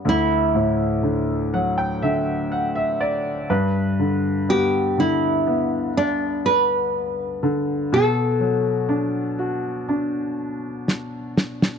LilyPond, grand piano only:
<<
  \new Staff \with { instrumentName = "Grand piano" } { \time 4/4 \key g \major \tempo 4 = 61 r4. fis''16 g''16 e''8 fis''16 e''16 d''8 b'8 | r1 | r1 | }
  \new Staff \with { instrumentName = "Grand piano" } { \clef bass \time 4/4 \key g \major d,8 a,8 d8 fis8 d4. g,8 | d8 b8 d8 b2 d8 | b,8 fis8 d'8 fis'8 d'2 | }
>>